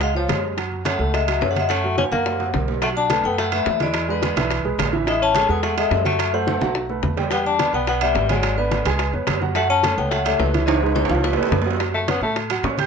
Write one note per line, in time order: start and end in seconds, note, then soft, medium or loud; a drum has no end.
0.00 0.26 C#2 medium
0.00 0.15 G#3 medium
0.00 0.15 F5 medium
0.00 high bongo medium
0.00 high conga soft
0.00 high timbale medium
0.15 0.42 F3 medium
0.15 0.27 F4 medium
0.15 0.42 C#5 medium
0.15 0.27 F5 medium
0.15 high bongo soft
0.15 high conga soft
0.28 0.94 F#2 medium
0.28 0.52 G#3 medium
0.28 0.52 G#4 medium
0.28 high bongo medium
0.28 low bongo medium
0.28 high conga medium
0.28 high timbale medium
0.28 low timbale medium
0.44 high bongo soft
0.57 0.80 F#3 medium
0.57 0.80 F#4 medium
0.57 high bongo medium
0.57 high conga soft
0.57 high timbale medium
0.72 high conga soft
0.85 1.11 A3 medium
0.85 0.97 C#4 medium
0.85 0.97 C#5 medium
0.85 1.15 F#5 medium
0.85 high bongo medium
0.85 high conga medium
0.85 high timbale medium
0.85 low timbale medium
0.99 1.38 C#2 medium
0.99 1.22 A3 medium
0.99 1.22 A4 medium
0.99 high bongo soft
0.99 high conga soft
1.14 1.40 G#3 medium
1.14 1.43 E5 medium
1.14 high bongo medium
1.14 high conga soft
1.14 high timbale medium
1.28 1.39 F#3 medium
1.28 1.39 F#4 medium
1.28 high bongo soft
1.28 high conga soft
1.28 high timbale medium
1.41 2.06 F#2 medium
1.41 1.50 E3 medium
1.41 1.53 C#4 medium
1.41 1.51 C#5 medium
1.41 1.53 C#5 medium
1.41 high bongo medium
1.41 low bongo medium
1.41 high conga soft
1.41 low timbale medium
1.50 1.59 A3 medium
1.50 1.60 F#5 medium
1.56 1.67 F#4 medium
1.56 1.67 F#5 medium
1.56 high bongo soft
1.56 high conga medium
1.56 high timbale medium
1.60 1.69 G#3 medium
1.60 1.70 E5 medium
1.69 1.96 A3 medium
1.69 1.81 C#4 medium
1.69 1.81 C#5 medium
1.69 1.95 F#5 medium
1.69 high bongo medium
1.69 high conga soft
1.69 high timbale medium
1.84 2.07 F#3 medium
1.84 2.07 F#4 medium
1.84 high conga soft
1.98 2.04 C#4 medium
1.98 2.04 G#5 medium
1.98 high bongo medium
1.98 high conga medium
1.98 high timbale medium
2.11 2.51 F#2 medium
2.11 2.51 A#3 medium
2.11 2.35 A#3 medium
2.11 2.35 A#4 medium
2.11 2.51 F#5 medium
2.11 high bongo soft
2.11 high conga medium
2.26 high bongo medium
2.26 high conga soft
2.26 low timbale medium
2.40 2.52 F#4 medium
2.40 2.52 F#5 medium
2.40 high bongo soft
2.40 high conga soft
2.40 low timbale medium
2.54 3.19 B1 medium
2.54 2.77 A#3 medium
2.54 2.77 A#4 medium
2.54 high bongo medium
2.54 low bongo medium
2.54 high conga medium
2.54 low timbale medium
2.68 high bongo soft
2.68 low timbale medium
2.82 3.05 F#3 medium
2.82 2.89 A3 medium
2.82 3.05 F#4 medium
2.82 3.06 F#5 medium
2.82 2.89 F#5 medium
2.82 high bongo medium
2.82 high conga soft
2.82 high timbale medium
2.96 3.23 D4 medium
2.96 3.25 A5 loud
2.96 high conga soft
3.10 3.22 A3 medium
3.10 3.22 A4 medium
3.10 3.22 B4 medium
3.10 high bongo medium
3.10 high conga medium
3.10 high timbale medium
3.10 low timbale medium
3.24 3.63 F#2 medium
3.24 3.48 A3 medium
3.24 3.38 B3 medium
3.24 3.48 A4 medium
3.24 3.48 B4 medium
3.24 3.39 G5 loud
3.24 high bongo soft
3.24 high conga soft
3.38 3.52 A3 medium
3.38 3.53 F#5 loud
3.38 high bongo medium
3.38 high conga soft
3.38 high timbale medium
3.52 3.79 A3 medium
3.52 3.76 A3 medium
3.52 3.76 A4 medium
3.52 3.76 B4 medium
3.52 3.79 E5 medium
3.52 high bongo soft
3.52 high conga soft
3.52 high timbale medium
3.66 4.31 E2 medium
3.66 high bongo medium
3.66 low bongo medium
3.66 high conga soft
3.66 low timbale medium
3.80 4.04 E3 medium
3.80 4.07 G#3 medium
3.80 4.04 E4 medium
3.80 4.08 D5 medium
3.80 4.04 E5 medium
3.80 high bongo soft
3.80 high conga medium
3.80 high timbale medium
3.94 high bongo medium
3.94 high conga soft
3.94 high timbale medium
4.08 4.62 D3 medium
4.08 4.31 G#3 medium
4.08 4.32 G#4 medium
4.08 4.32 B4 medium
4.08 4.62 B4 medium
4.08 high conga soft
4.22 high bongo medium
4.22 high conga medium
4.22 high timbale medium
4.22 low timbale medium
4.36 4.63 B1 medium
4.36 4.60 E3 medium
4.36 4.60 E4 medium
4.36 4.60 E5 medium
4.36 high bongo soft
4.36 high conga loud
4.36 high timbale medium
4.51 high bongo medium
4.51 high conga soft
4.51 high timbale medium
4.65 4.78 B1 medium
4.65 4.88 G#3 medium
4.65 4.88 G#4 medium
4.65 4.88 B4 medium
4.65 high bongo soft
4.65 high conga soft
4.78 5.43 A1 medium
4.78 high bongo medium
4.78 low bongo medium
4.78 high conga medium
4.78 high timbale medium
4.78 low timbale medium
4.93 5.04 E3 medium
4.93 5.05 E4 medium
4.93 5.05 E5 medium
4.93 high bongo soft
4.93 high conga medium
5.07 5.30 E3 medium
5.07 5.21 G#3 medium
5.07 5.30 E4 medium
5.07 5.30 E5 medium
5.07 5.22 E5 medium
5.07 high bongo medium
5.07 high conga soft
5.07 high timbale medium
5.21 5.48 C#4 medium
5.21 5.48 A5 loud
5.21 high conga soft
5.35 5.47 G#3 medium
5.35 5.47 G#4 medium
5.35 5.47 A4 medium
5.35 high bongo medium
5.35 high conga medium
5.35 high timbale medium
5.35 low timbale medium
5.49 5.88 E2 medium
5.49 5.72 G#3 medium
5.49 5.62 B3 medium
5.49 5.72 G#4 medium
5.49 5.73 A4 medium
5.49 5.63 G#5 medium
5.49 high bongo soft
5.49 high conga soft
5.63 5.76 A3 medium
5.63 5.78 F#5 loud
5.63 high bongo medium
5.63 high conga soft
5.63 high timbale medium
5.77 6.03 G#3 medium
5.77 6.00 G#3 medium
5.77 6.01 G#4 medium
5.77 6.01 A4 medium
5.77 6.04 E5 medium
5.77 high bongo soft
5.77 high conga soft
5.77 high timbale medium
5.91 6.56 F#2 medium
5.91 high bongo medium
5.91 low bongo medium
5.91 high conga soft
5.91 low timbale medium
6.04 6.28 F#3 medium
6.04 6.31 A3 medium
6.04 6.28 F#4 medium
6.04 6.32 E5 medium
6.04 6.28 F#5 medium
6.04 high bongo soft
6.04 high conga medium
6.04 high timbale medium
6.19 high bongo medium
6.19 high timbale medium
6.33 6.56 A3 medium
6.33 6.86 A3 medium
6.33 6.57 A4 medium
6.33 6.57 C5 medium
6.33 6.86 F#5 medium
6.33 high conga soft
6.47 high bongo medium
6.47 high conga medium
6.47 high timbale medium
6.61 7.00 B1 medium
6.61 6.85 F#3 medium
6.61 6.84 F#4 medium
6.61 6.85 F#5 medium
6.61 high bongo soft
6.61 high conga medium
6.61 high timbale medium
6.75 high bongo medium
6.75 high conga soft
6.89 7.12 A3 medium
6.89 7.12 A4 medium
6.89 7.13 B4 medium
6.89 high bongo soft
6.89 high conga soft
7.03 7.68 E2 medium
7.03 high bongo medium
7.03 low bongo medium
7.03 high conga medium
7.17 7.29 G3 medium
7.17 7.29 G4 medium
7.17 7.29 G5 medium
7.17 high bongo soft
7.17 high conga medium
7.17 low timbale medium
7.31 7.54 G3 medium
7.31 7.45 B3 medium
7.31 7.54 G4 medium
7.31 7.55 G5 medium
7.31 7.46 G5 loud
7.31 high bongo medium
7.31 high conga soft
7.31 high timbale medium
7.46 7.72 D4 medium
7.46 7.72 A5 loud
7.46 high conga soft
7.59 7.71 B3 medium
7.59 7.71 B4 medium
7.59 7.71 D5 medium
7.59 high bongo medium
7.59 high conga medium
7.59 high timbale medium
7.59 low timbale medium
7.73 8.12 B1 medium
7.73 7.96 B3 medium
7.73 7.87 B3 medium
7.73 7.96 B4 medium
7.73 7.97 D5 medium
7.73 7.88 G5 medium
7.73 high bongo soft
7.73 high conga soft
7.87 8.01 B3 medium
7.87 8.01 F#5 loud
7.87 high bongo medium
7.87 high conga soft
7.87 high timbale medium
8.01 8.28 G3 medium
8.01 8.24 B3 medium
8.01 8.25 B4 medium
8.01 8.25 D5 medium
8.01 8.28 E5 medium
8.01 high bongo soft
8.01 high conga soft
8.01 high timbale medium
8.15 8.80 G#1 medium
8.15 high bongo medium
8.15 low bongo medium
8.15 high conga soft
8.15 low timbale medium
8.29 8.56 F#3 medium
8.29 8.53 G#3 medium
8.29 8.53 G#4 medium
8.29 8.56 D5 medium
8.29 8.53 G#5 medium
8.29 high bongo soft
8.29 high conga medium
8.29 high timbale medium
8.43 high bongo medium
8.43 high conga soft
8.43 high timbale medium
8.58 8.97 D3 medium
8.58 8.81 B3 medium
8.58 9.10 B4 medium
8.58 8.81 B4 medium
8.58 8.81 D5 medium
8.58 high conga soft
8.71 high bongo medium
8.71 high conga medium
8.71 high timbale medium
8.71 low timbale medium
8.85 9.11 C#2 medium
8.85 9.09 G#3 medium
8.85 9.09 G#4 medium
8.85 9.09 G#5 medium
8.85 high bongo soft
8.85 high conga medium
8.85 high timbale medium
8.99 high bongo medium
8.99 high conga soft
8.99 high timbale medium
9.13 9.27 F2 medium
9.13 9.37 B3 medium
9.13 9.37 B4 medium
9.13 9.37 C#5 medium
9.13 high bongo soft
9.13 high conga soft
9.27 9.92 F#2 loud
9.27 high bongo medium
9.27 low bongo medium
9.27 high conga medium
9.27 high timbale medium
9.27 low timbale medium
9.41 9.53 F#3 medium
9.41 9.53 F#4 medium
9.41 9.53 F#5 medium
9.41 high bongo soft
9.41 high conga medium
9.55 9.79 F#3 medium
9.55 9.69 A3 medium
9.55 9.79 F#4 medium
9.55 9.71 F#5 loud
9.55 9.80 F#5 medium
9.55 high bongo medium
9.55 high timbale medium
9.70 9.96 C#4 medium
9.70 9.99 A5 loud
9.70 high conga soft
9.83 9.96 A3 medium
9.83 9.96 A4 medium
9.83 9.96 C#5 medium
9.83 high bongo medium
9.83 high conga medium
9.83 high timbale medium
9.83 low timbale medium
9.98 10.37 C#2 medium
9.98 10.21 A3 medium
9.98 10.10 B3 medium
9.98 10.21 A4 medium
9.98 10.21 C#5 medium
9.98 10.11 G5 loud
9.98 high bongo soft
9.98 high conga soft
10.11 10.24 A3 medium
10.11 10.26 F#5 loud
10.11 high bongo medium
10.11 high conga soft
10.11 high timbale medium
10.25 10.38 G3 medium
10.25 10.49 A3 medium
10.25 10.50 A4 medium
10.25 10.50 C#5 medium
10.25 10.40 E5 medium
10.25 high bongo soft
10.25 high conga soft
10.25 high timbale medium
10.38 11.04 C#2 medium
10.38 10.65 E3 medium
10.38 10.69 C#5 medium
10.38 high bongo medium
10.38 low bongo medium
10.38 high conga soft
10.38 low timbale medium
10.54 10.77 E3 medium
10.54 10.77 E4 medium
10.54 10.78 E5 medium
10.54 high bongo soft
10.54 high conga medium
10.54 high timbale medium
10.66 10.93 G#3 medium
10.66 10.96 D#5 medium
10.66 high bongo medium
10.66 high conga soft
10.66 high timbale loud
10.77 high timbale medium
10.82 11.05 G#3 medium
10.82 11.06 G#4 medium
10.82 11.06 B4 medium
10.82 high conga soft
10.82 high timbale medium
10.95 11.21 E3 medium
10.95 11.25 C#5 medium
10.95 high bongo medium
10.95 high conga medium
10.95 high timbale medium
11.05 11.36 C#2 medium
11.05 high timbale loud
11.10 11.33 F3 medium
11.10 11.33 F4 medium
11.10 11.33 F5 medium
11.10 high bongo soft
11.10 high conga medium
11.15 low timbale medium
11.23 11.63 E3 medium
11.23 11.63 B4 medium
11.23 high bongo medium
11.23 high conga soft
11.23 low timbale medium
11.33 11.51 E2 medium
11.33 low timbale medium
11.38 11.61 A3 medium
11.38 11.61 A4 medium
11.38 11.62 B4 medium
11.38 high bongo soft
11.38 high conga soft
11.43 low timbale medium
11.51 12.16 F#2 medium
11.51 high bongo medium
11.51 low bongo medium
11.51 high conga medium
11.51 low timbale medium
11.62 low timbale medium
11.66 11.77 F#3 medium
11.66 11.78 F#4 medium
11.66 11.78 F#5 medium
11.66 high bongo soft
11.71 low timbale medium
11.80 12.03 F#3 medium
11.80 12.03 F#4 medium
11.80 12.03 F#5 medium
11.80 high bongo medium
11.80 high conga soft
11.80 high timbale medium
11.94 12.10 A3 medium
11.94 high conga soft
12.08 12.22 B3 medium
12.08 12.20 C#4 medium
12.08 12.20 C#5 medium
12.08 12.20 C#6 medium
12.08 high bongo medium
12.08 high conga medium
12.08 high timbale medium
12.08 low timbale medium
12.21 12.61 A2 medium
12.21 12.45 A3 medium
12.21 12.36 A3 medium
12.21 12.45 A4 medium
12.21 12.46 A5 medium
12.21 high bongo soft
12.21 high conga soft
12.36 high bongo medium
12.36 high conga soft
12.36 high timbale medium
12.50 12.62 F#3 medium
12.50 12.62 F#4 medium
12.50 12.62 F#5 medium
12.50 high bongo soft
12.50 high conga soft
12.50 high timbale medium
12.63 12.87 A2 medium
12.63 12.76 C#4 medium
12.63 12.76 C#5 medium
12.63 12.76 C#6 medium
12.63 high bongo medium
12.63 low bongo medium
12.63 high conga soft
12.63 low timbale medium
12.78 12.87 G4 medium
12.78 12.87 G5 medium
12.78 12.87 G6 medium
12.78 high bongo soft
12.78 high conga medium
12.78 high timbale medium